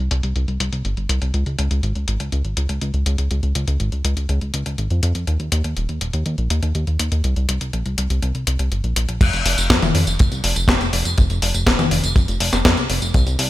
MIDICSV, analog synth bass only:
0, 0, Header, 1, 2, 480
1, 0, Start_track
1, 0, Key_signature, -4, "minor"
1, 0, Tempo, 491803
1, 1308, Time_signature, 4, 2, 24, 8
1, 13175, End_track
2, 0, Start_track
2, 0, Title_t, "Analog synth bass"
2, 0, Program_c, 0, 38
2, 110, Note_on_c, 0, 36, 94
2, 209, Note_off_c, 0, 36, 0
2, 228, Note_on_c, 0, 36, 83
2, 329, Note_off_c, 0, 36, 0
2, 348, Note_on_c, 0, 36, 94
2, 449, Note_off_c, 0, 36, 0
2, 469, Note_on_c, 0, 36, 74
2, 569, Note_off_c, 0, 36, 0
2, 587, Note_on_c, 0, 36, 92
2, 688, Note_off_c, 0, 36, 0
2, 708, Note_on_c, 0, 36, 82
2, 809, Note_off_c, 0, 36, 0
2, 828, Note_on_c, 0, 31, 94
2, 928, Note_off_c, 0, 31, 0
2, 947, Note_on_c, 0, 31, 73
2, 1048, Note_off_c, 0, 31, 0
2, 1066, Note_on_c, 0, 36, 93
2, 1168, Note_off_c, 0, 36, 0
2, 1187, Note_on_c, 0, 36, 78
2, 1288, Note_off_c, 0, 36, 0
2, 1307, Note_on_c, 0, 37, 94
2, 1408, Note_off_c, 0, 37, 0
2, 1427, Note_on_c, 0, 37, 80
2, 1528, Note_off_c, 0, 37, 0
2, 1548, Note_on_c, 0, 37, 93
2, 1649, Note_off_c, 0, 37, 0
2, 1667, Note_on_c, 0, 37, 83
2, 1768, Note_off_c, 0, 37, 0
2, 1787, Note_on_c, 0, 32, 93
2, 1888, Note_off_c, 0, 32, 0
2, 1908, Note_on_c, 0, 37, 75
2, 2008, Note_off_c, 0, 37, 0
2, 2028, Note_on_c, 0, 32, 94
2, 2129, Note_off_c, 0, 32, 0
2, 2148, Note_on_c, 0, 37, 81
2, 2249, Note_off_c, 0, 37, 0
2, 2268, Note_on_c, 0, 37, 100
2, 2369, Note_off_c, 0, 37, 0
2, 2387, Note_on_c, 0, 32, 75
2, 2488, Note_off_c, 0, 32, 0
2, 2508, Note_on_c, 0, 37, 90
2, 2608, Note_off_c, 0, 37, 0
2, 2627, Note_on_c, 0, 37, 79
2, 2728, Note_off_c, 0, 37, 0
2, 2748, Note_on_c, 0, 37, 95
2, 2848, Note_off_c, 0, 37, 0
2, 2868, Note_on_c, 0, 37, 74
2, 2969, Note_off_c, 0, 37, 0
2, 2987, Note_on_c, 0, 37, 88
2, 3088, Note_off_c, 0, 37, 0
2, 3108, Note_on_c, 0, 37, 80
2, 3209, Note_off_c, 0, 37, 0
2, 3228, Note_on_c, 0, 37, 97
2, 3329, Note_off_c, 0, 37, 0
2, 3348, Note_on_c, 0, 37, 79
2, 3449, Note_off_c, 0, 37, 0
2, 3468, Note_on_c, 0, 37, 95
2, 3569, Note_off_c, 0, 37, 0
2, 3588, Note_on_c, 0, 37, 82
2, 3689, Note_off_c, 0, 37, 0
2, 3708, Note_on_c, 0, 32, 93
2, 3809, Note_off_c, 0, 32, 0
2, 3828, Note_on_c, 0, 37, 74
2, 3928, Note_off_c, 0, 37, 0
2, 3948, Note_on_c, 0, 37, 95
2, 4049, Note_off_c, 0, 37, 0
2, 4067, Note_on_c, 0, 37, 80
2, 4168, Note_off_c, 0, 37, 0
2, 4189, Note_on_c, 0, 37, 100
2, 4289, Note_off_c, 0, 37, 0
2, 4309, Note_on_c, 0, 37, 75
2, 4409, Note_off_c, 0, 37, 0
2, 4428, Note_on_c, 0, 37, 93
2, 4529, Note_off_c, 0, 37, 0
2, 4549, Note_on_c, 0, 37, 80
2, 4649, Note_off_c, 0, 37, 0
2, 4669, Note_on_c, 0, 32, 97
2, 4769, Note_off_c, 0, 32, 0
2, 4789, Note_on_c, 0, 41, 75
2, 4889, Note_off_c, 0, 41, 0
2, 4908, Note_on_c, 0, 41, 93
2, 5009, Note_off_c, 0, 41, 0
2, 5027, Note_on_c, 0, 41, 78
2, 5128, Note_off_c, 0, 41, 0
2, 5147, Note_on_c, 0, 39, 94
2, 5248, Note_off_c, 0, 39, 0
2, 5266, Note_on_c, 0, 39, 78
2, 5368, Note_off_c, 0, 39, 0
2, 5388, Note_on_c, 0, 39, 93
2, 5489, Note_off_c, 0, 39, 0
2, 5508, Note_on_c, 0, 39, 81
2, 5609, Note_off_c, 0, 39, 0
2, 5628, Note_on_c, 0, 27, 98
2, 5729, Note_off_c, 0, 27, 0
2, 5748, Note_on_c, 0, 39, 74
2, 5849, Note_off_c, 0, 39, 0
2, 5868, Note_on_c, 0, 27, 95
2, 5969, Note_off_c, 0, 27, 0
2, 5988, Note_on_c, 0, 39, 81
2, 6089, Note_off_c, 0, 39, 0
2, 6108, Note_on_c, 0, 39, 97
2, 6208, Note_off_c, 0, 39, 0
2, 6227, Note_on_c, 0, 34, 77
2, 6328, Note_off_c, 0, 34, 0
2, 6348, Note_on_c, 0, 39, 93
2, 6449, Note_off_c, 0, 39, 0
2, 6467, Note_on_c, 0, 39, 82
2, 6568, Note_off_c, 0, 39, 0
2, 6589, Note_on_c, 0, 39, 93
2, 6689, Note_off_c, 0, 39, 0
2, 6709, Note_on_c, 0, 39, 74
2, 6809, Note_off_c, 0, 39, 0
2, 6829, Note_on_c, 0, 39, 89
2, 6929, Note_off_c, 0, 39, 0
2, 6947, Note_on_c, 0, 39, 80
2, 7048, Note_off_c, 0, 39, 0
2, 7068, Note_on_c, 0, 36, 97
2, 7169, Note_off_c, 0, 36, 0
2, 7187, Note_on_c, 0, 36, 81
2, 7288, Note_off_c, 0, 36, 0
2, 7308, Note_on_c, 0, 36, 93
2, 7408, Note_off_c, 0, 36, 0
2, 7427, Note_on_c, 0, 36, 78
2, 7528, Note_off_c, 0, 36, 0
2, 7547, Note_on_c, 0, 34, 97
2, 7648, Note_off_c, 0, 34, 0
2, 7667, Note_on_c, 0, 36, 76
2, 7768, Note_off_c, 0, 36, 0
2, 7787, Note_on_c, 0, 36, 90
2, 7888, Note_off_c, 0, 36, 0
2, 7907, Note_on_c, 0, 36, 79
2, 8008, Note_off_c, 0, 36, 0
2, 8026, Note_on_c, 0, 36, 99
2, 8128, Note_off_c, 0, 36, 0
2, 8148, Note_on_c, 0, 36, 76
2, 8248, Note_off_c, 0, 36, 0
2, 8266, Note_on_c, 0, 36, 90
2, 8368, Note_off_c, 0, 36, 0
2, 8386, Note_on_c, 0, 36, 80
2, 8488, Note_off_c, 0, 36, 0
2, 8506, Note_on_c, 0, 31, 98
2, 8608, Note_off_c, 0, 31, 0
2, 8626, Note_on_c, 0, 34, 75
2, 8728, Note_off_c, 0, 34, 0
2, 8747, Note_on_c, 0, 34, 95
2, 8848, Note_off_c, 0, 34, 0
2, 8866, Note_on_c, 0, 34, 84
2, 8968, Note_off_c, 0, 34, 0
2, 8988, Note_on_c, 0, 29, 98
2, 9089, Note_off_c, 0, 29, 0
2, 9107, Note_on_c, 0, 29, 80
2, 9208, Note_off_c, 0, 29, 0
2, 9228, Note_on_c, 0, 29, 96
2, 9328, Note_off_c, 0, 29, 0
2, 9348, Note_on_c, 0, 29, 84
2, 9449, Note_off_c, 0, 29, 0
2, 9467, Note_on_c, 0, 41, 98
2, 9568, Note_off_c, 0, 41, 0
2, 9588, Note_on_c, 0, 29, 79
2, 9689, Note_off_c, 0, 29, 0
2, 9707, Note_on_c, 0, 41, 99
2, 9808, Note_off_c, 0, 41, 0
2, 9828, Note_on_c, 0, 29, 84
2, 9929, Note_off_c, 0, 29, 0
2, 9957, Note_on_c, 0, 29, 103
2, 10053, Note_off_c, 0, 29, 0
2, 10067, Note_on_c, 0, 36, 77
2, 10168, Note_off_c, 0, 36, 0
2, 10187, Note_on_c, 0, 29, 96
2, 10288, Note_off_c, 0, 29, 0
2, 10307, Note_on_c, 0, 29, 85
2, 10408, Note_off_c, 0, 29, 0
2, 10421, Note_on_c, 0, 29, 100
2, 10525, Note_off_c, 0, 29, 0
2, 10547, Note_on_c, 0, 29, 76
2, 10648, Note_off_c, 0, 29, 0
2, 10667, Note_on_c, 0, 29, 94
2, 10768, Note_off_c, 0, 29, 0
2, 10787, Note_on_c, 0, 29, 82
2, 10888, Note_off_c, 0, 29, 0
2, 10914, Note_on_c, 0, 29, 102
2, 11012, Note_off_c, 0, 29, 0
2, 11027, Note_on_c, 0, 29, 84
2, 11128, Note_off_c, 0, 29, 0
2, 11147, Note_on_c, 0, 29, 94
2, 11248, Note_off_c, 0, 29, 0
2, 11268, Note_on_c, 0, 29, 84
2, 11368, Note_off_c, 0, 29, 0
2, 11385, Note_on_c, 0, 27, 97
2, 11487, Note_off_c, 0, 27, 0
2, 11507, Note_on_c, 0, 29, 79
2, 11608, Note_off_c, 0, 29, 0
2, 11627, Note_on_c, 0, 29, 97
2, 11728, Note_off_c, 0, 29, 0
2, 11747, Note_on_c, 0, 29, 85
2, 11848, Note_off_c, 0, 29, 0
2, 11866, Note_on_c, 0, 29, 98
2, 11968, Note_off_c, 0, 29, 0
2, 11988, Note_on_c, 0, 29, 79
2, 12088, Note_off_c, 0, 29, 0
2, 12107, Note_on_c, 0, 29, 96
2, 12208, Note_off_c, 0, 29, 0
2, 12228, Note_on_c, 0, 29, 82
2, 12329, Note_off_c, 0, 29, 0
2, 12348, Note_on_c, 0, 41, 104
2, 12449, Note_off_c, 0, 41, 0
2, 12467, Note_on_c, 0, 36, 77
2, 12568, Note_off_c, 0, 36, 0
2, 12586, Note_on_c, 0, 29, 95
2, 12688, Note_off_c, 0, 29, 0
2, 12707, Note_on_c, 0, 29, 83
2, 12808, Note_off_c, 0, 29, 0
2, 12829, Note_on_c, 0, 36, 96
2, 12929, Note_off_c, 0, 36, 0
2, 12945, Note_on_c, 0, 36, 84
2, 13047, Note_off_c, 0, 36, 0
2, 13066, Note_on_c, 0, 36, 95
2, 13168, Note_off_c, 0, 36, 0
2, 13175, End_track
0, 0, End_of_file